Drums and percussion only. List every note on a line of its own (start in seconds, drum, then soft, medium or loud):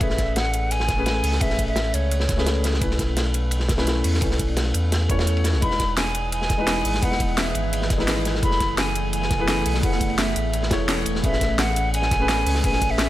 0.00 kick loud
0.00 closed hi-hat medium
0.00 ride medium
0.10 snare soft
0.18 kick medium
0.18 snare soft
0.18 closed hi-hat medium
0.18 ride medium
0.36 snare loud
0.36 closed hi-hat medium
0.36 ride medium
0.54 closed hi-hat medium
0.54 ride medium
0.71 closed hi-hat medium
0.71 ride medium
0.80 snare soft
0.88 kick loud
0.88 snare soft
0.88 closed hi-hat medium
0.88 ride medium
1.06 snare loud
1.06 closed hi-hat medium
1.06 ride medium
1.24 closed hi-hat medium
1.24 open hi-hat medium
1.32 snare soft
1.41 kick loud
1.41 closed hi-hat medium
1.41 ride medium
1.50 snare soft
1.59 kick medium
1.59 closed hi-hat medium
1.59 ride medium
1.68 ride soft
1.76 snare loud
1.76 closed hi-hat medium
1.76 ride medium
1.94 closed hi-hat medium
1.94 ride medium
2.11 closed hi-hat medium
2.11 ride medium
2.20 snare soft
2.29 kick loud
2.29 snare soft
2.29 closed hi-hat medium
2.29 ride medium
2.38 snare medium
2.46 snare loud
2.46 closed hi-hat medium
2.46 ride medium
2.55 ride soft
2.64 snare medium
2.64 closed hi-hat medium
2.64 ride medium
2.74 snare soft
2.81 kick loud
2.81 closed hi-hat medium
2.81 ride medium
2.91 snare soft
2.99 kick medium
2.99 snare soft
2.99 closed hi-hat medium
2.99 ride medium
3.17 snare loud
3.17 closed hi-hat medium
3.17 ride medium
3.34 closed hi-hat medium
3.34 ride medium
3.51 closed hi-hat medium
3.51 ride medium
3.60 snare soft
3.69 kick loud
3.69 snare medium
3.69 closed hi-hat medium
3.69 ride medium
3.78 snare loud
3.78 ride medium
3.87 snare loud
3.87 closed hi-hat medium
3.87 ride medium
4.04 closed hi-hat medium
4.04 open hi-hat medium
4.14 snare soft
4.21 kick loud
4.21 closed hi-hat medium
4.21 ride medium
4.31 snare soft
4.39 kick medium
4.39 closed hi-hat medium
4.39 ride medium
4.48 ride soft
4.57 snare loud
4.57 closed hi-hat medium
4.57 ride medium
4.74 closed hi-hat medium
4.74 ride medium
4.92 snare medium
4.92 closed hi-hat medium
4.92 ride medium
5.09 kick loud
5.09 closed hi-hat medium
5.09 ride medium
5.19 snare medium
5.19 ride medium
5.27 closed hi-hat medium
5.37 ride medium
5.44 snare soft
5.44 closed hi-hat medium
5.44 ride medium
5.53 snare soft
5.62 kick loud
5.62 closed hi-hat medium
5.62 ride medium
5.71 snare soft
5.80 kick medium
5.80 snare soft
5.80 closed hi-hat medium
5.80 ride medium
5.97 snare loud
5.97 closed hi-hat medium
5.97 ride medium
6.15 closed hi-hat medium
6.15 ride medium
6.32 closed hi-hat medium
6.32 ride medium
6.42 snare soft
6.49 kick loud
6.49 snare soft
6.49 closed hi-hat medium
6.49 ride medium
6.67 snare loud
6.67 closed hi-hat medium
6.67 ride medium
6.85 closed hi-hat medium
6.85 open hi-hat medium
6.94 snare soft
7.03 kick loud
7.03 closed hi-hat medium
7.03 ride medium
7.12 snare soft
7.20 kick medium
7.20 closed hi-hat medium
7.20 ride medium
7.29 ride soft
7.37 snare loud
7.37 closed hi-hat medium
7.37 ride medium
7.55 closed hi-hat medium
7.55 ride medium
7.73 closed hi-hat medium
7.73 ride medium
7.82 snare soft
7.90 kick loud
7.90 snare soft
7.90 closed hi-hat medium
7.90 ride medium
7.99 snare soft
8.08 snare loud
8.08 closed hi-hat medium
8.08 ride medium
8.17 ride soft
8.25 snare soft
8.25 closed hi-hat medium
8.25 ride medium
8.35 snare soft
8.43 kick loud
8.43 closed hi-hat medium
8.43 ride medium
8.51 snare soft
8.60 kick medium
8.60 snare soft
8.60 closed hi-hat medium
8.60 ride medium
8.78 snare loud
8.78 closed hi-hat medium
8.78 ride medium
8.96 closed hi-hat medium
8.96 ride medium
9.13 closed hi-hat medium
9.13 ride medium
9.22 snare soft
9.30 kick loud
9.30 snare soft
9.30 closed hi-hat medium
9.30 ride medium
9.48 snare loud
9.48 closed hi-hat medium
9.48 ride medium
9.66 closed hi-hat medium
9.66 open hi-hat medium
9.74 snare soft
9.83 kick loud
9.83 closed hi-hat medium
9.83 ride loud
9.92 snare soft
10.00 kick medium
10.00 closed hi-hat medium
10.00 ride medium
10.10 ride soft
10.18 snare loud
10.18 closed hi-hat medium
10.18 ride medium
10.36 closed hi-hat medium
10.36 ride medium
10.53 closed hi-hat medium
10.53 ride medium
10.63 snare soft
10.71 kick loud
10.71 snare loud
10.71 closed hi-hat medium
10.71 ride medium
10.88 snare loud
10.88 closed hi-hat medium
10.88 ride medium
11.06 closed hi-hat medium
11.06 ride medium
11.15 snare soft
11.24 kick loud
11.24 closed hi-hat medium
11.24 ride medium
11.33 snare soft
11.41 kick medium
11.41 snare soft
11.41 closed hi-hat medium
11.41 ride medium
11.59 snare loud
11.59 closed hi-hat medium
11.59 ride medium
11.76 closed hi-hat medium
11.76 ride medium
11.94 closed hi-hat medium
11.94 ride medium
12.02 snare soft
12.11 kick loud
12.11 snare soft
12.11 closed hi-hat medium
12.11 ride medium
12.29 snare loud
12.29 closed hi-hat medium
12.29 ride medium
12.47 closed hi-hat medium
12.47 open hi-hat medium
12.55 snare soft
12.64 kick loud
12.64 closed hi-hat medium
12.64 ride medium
12.73 snare soft
12.82 kick medium
12.82 closed hi-hat medium
12.82 ride medium
12.89 ride soft
12.98 snare loud
12.98 closed hi-hat medium
12.98 ride medium